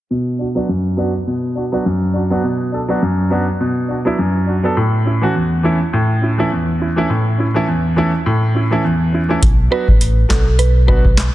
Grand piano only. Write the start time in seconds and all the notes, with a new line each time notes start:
0.11 B2
0.39 D4 F#4
0.55 F#3 B3 D4 F#4
0.69 F#2
0.97 F#3 B3 D4 F#4
1.27 B2
1.55 D4 F#4
1.72 F#3 B3 D4 F#4
1.86 F#2
2.14 D4 F#4
2.30 F#3 B3 D4 F#4
2.44 B2
2.72 D4 A4
2.88 F#3 B3 D4 F#4
3.02 F#2
3.30 F#3 B3 D4 F#4
3.60 B2
3.88 D4 F#4
4.05 F#3 B3 D4 E4
4.19 F#2
4.47 D4 F#4
4.63 F#3 B3 D4 A4
4.77 A2
5.05 C#4 E4
5.21 E3 A3 C#4 F#4
5.35 E2
5.63 E3 A3 C#4 E4
5.93 A2
6.21 C#4 E4
6.38 E3 A3 C#4 E4
6.52 E2
6.80 C#4 E4
6.96 E3 A3 C#4 E4
7.10 A2
7.38 C#4 E4
7.54 E3 A3 C#4 E4
7.68 E2
7.96 E3 A3 C#4 E4
8.26 A2
8.54 C#4 E4
8.71 E3 A3 C#4 E4
8.84 E2
9.12 C#4 E4
9.29 E3 A3 C#4 E4
9.71 F#3 B3 D4 F#4
10.29 F#3 B3 D4 F#4
10.87 F#3 B3 D4 F#4